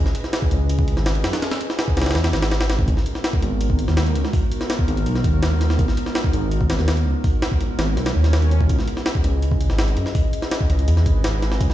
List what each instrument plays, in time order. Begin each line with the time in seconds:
Already playing: ambient pad C#4 E4 G#4 B4 D#5
0.06 snare
0.15 closed hi-hat
0.24 snare
0.33 snare, closed hi-hat
0.42 kick
0.51 detuned saw bass C#2, closed hi-hat
0.69 closed hi-hat
0.79 detuned saw bass C#2, kick
0.88 closed hi-hat
0.97 detuned saw bass G#1, snare
1.06 snare, closed hi-hat
1.15 closed hi-hat
1.24 detuned saw bass F#2, snare, closed hi-hat
1.33 snare, closed hi-hat
1.42 ambient pad C#4 E4 G#4 B4 D#5, snare, closed hi-hat
1.51 snare, closed hi-hat
1.61 closed hi-hat
1.70 snare
1.79 snare, closed hi-hat
1.88 kick
1.97 detuned saw bass C#2, snare, closed hi-hat
2.02 snare, closed hi-hat
2.06 snare, closed hi-hat
2.11 snare, closed hi-hat
2.15 detuned saw bass E2, snare, closed hi-hat
2.24 snare, closed hi-hat
2.33 detuned saw bass G#1, snare, closed hi-hat
2.42 snare, closed hi-hat
2.51 snare, closed hi-hat
2.61 snare, closed hi-hat
2.70 snare, closed hi-hat
2.79 kick
2.88 detuned saw bass G#1, ambient pad G#3 B3 D#4 F#4 A#4, kick, closed hi-hat
2.97 snare
3.06 closed hi-hat
3.15 snare
3.24 snare, closed hi-hat
3.33 kick
3.42 detuned saw bass G#1, closed hi-hat
3.61 closed hi-hat
3.70 detuned saw bass G#1, kick
3.79 closed hi-hat
3.88 detuned saw bass D#2, snare
3.97 snare, closed hi-hat
4.06 closed hi-hat
4.15 detuned saw bass C#2, closed hi-hat
4.25 snare
4.33 ambient pad G#3 B3 D#4 F#4 A#4, kick, open hi-hat
4.52 closed hi-hat
4.61 snare
4.70 snare, closed hi-hat
4.79 kick
4.88 detuned saw bass G#1, closed hi-hat
4.97 closed hi-hat
5.06 detuned saw bass B1, closed hi-hat
5.15 snare
5.24 detuned saw bass D#2, kick, closed hi-hat
5.43 snare, closed hi-hat
5.61 snare, closed hi-hat
5.70 snare
5.79 detuned saw bass G#1, ambient pad G#3 B3 D#4 F#4 A#4, kick, closed hi-hat
5.88 snare
5.97 closed hi-hat
6.06 snare
6.15 snare, closed hi-hat
6.24 kick
6.33 detuned saw bass G#1, closed hi-hat
6.51 closed hi-hat
6.61 detuned saw bass G#1, kick
6.70 snare, closed hi-hat
6.79 detuned saw bass D#2, snare
6.88 snare, closed hi-hat
6.97 closed hi-hat
7.06 detuned saw bass C#2
7.24 ambient pad G#3 B3 D#4 F#4 A#4, kick, open hi-hat
7.42 snare, closed hi-hat
7.52 kick
7.61 closed hi-hat
7.79 detuned saw bass G#1, snare, closed hi-hat
7.97 detuned saw bass B1, snare, closed hi-hat, swell
8.06 snare, closed hi-hat
8.15 detuned saw bass D#2
8.24 snare, closed hi-hat
8.33 snare, closed hi-hat
8.42 closed hi-hat
8.51 closed hi-hat
8.61 kick
8.69 detuned saw bass C#2, ambient pad C#4 E4 G#4 B4 D#5, kick, closed hi-hat
8.79 snare
8.88 closed hi-hat
8.97 snare
9.06 snare, closed hi-hat
9.15 kick
9.24 detuned saw bass C#2, closed hi-hat
9.42 closed hi-hat
9.51 detuned saw bass C#2, kick
9.61 closed hi-hat
9.70 detuned saw bass G#1, snare
9.79 snare, closed hi-hat
9.88 closed hi-hat
9.97 detuned saw bass F#2, closed hi-hat
10.06 snare
10.15 ambient pad C#4 E4 G#4 B4 D#5, kick, open hi-hat
10.33 closed hi-hat
10.42 snare
10.51 snare, closed hi-hat
10.61 kick
10.70 detuned saw bass C#2, closed hi-hat
10.79 closed hi-hat
10.88 detuned saw bass E2, closed hi-hat
10.97 snare
11.06 detuned saw bass G#1, kick, closed hi-hat
11.24 snare, closed hi-hat
11.42 snare, closed hi-hat
11.52 snare
11.61 detuned saw bass C#2, ambient pad C#4 E4 G#4 B4 D#5, kick, closed hi-hat
11.70 snare